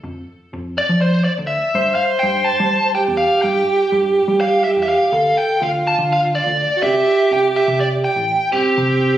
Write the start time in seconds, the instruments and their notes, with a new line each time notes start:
0.04 picked electric bass F2
0.53 picked electric bass F2
0.78 lead electric guitar D5
0.89 picked electric bass F3
1.01 lead electric guitar C5
1.24 lead electric guitar D5
1.38 picked electric bass D2
1.47 lead electric guitar E5
1.75 picked electric bass G2, alto saxophone C5
1.95 lead electric guitar F5
2.19 picked electric bass G2, lead electric guitar G5
2.44 lead electric guitar A5
2.60 picked electric bass G3
2.95 alto saxophone G4, lead electric guitar G5
3.08 picked electric bass E2
3.17 lead electric guitar F5
3.42 picked electric bass G2, lead electric guitar G5
3.92 picked electric bass G2
4.28 picked electric bass G3
4.41 lead electric guitar F5
4.64 lead electric guitar E5
4.76 picked electric bass E2
4.83 lead electric guitar E5
4.89 lead electric guitar F5
5.12 picked electric bass D2, alto saxophone A4
5.37 lead electric guitar G5
5.61 picked electric bass D2, alto saxophone F4, lead electric guitar F5
5.87 lead electric guitar A5
5.98 picked electric bass D3
6.13 lead electric guitar F5
6.35 lead electric guitar D5
6.47 picked electric bass D2
6.76 alto saxophone F#4
6.82 picked electric bass C2, alto saxophone G4, lead electric guitar E5
7.31 picked electric bass C2, lead electric guitar G5
7.56 lead electric guitar E5
7.68 picked electric bass C3
7.80 lead electric guitar D5
8.04 lead electric guitar G5
8.16 picked electric bass A1
8.52 picked electric bass C2, alto saxophone C4, lead electric guitar G4
8.77 picked electric bass C3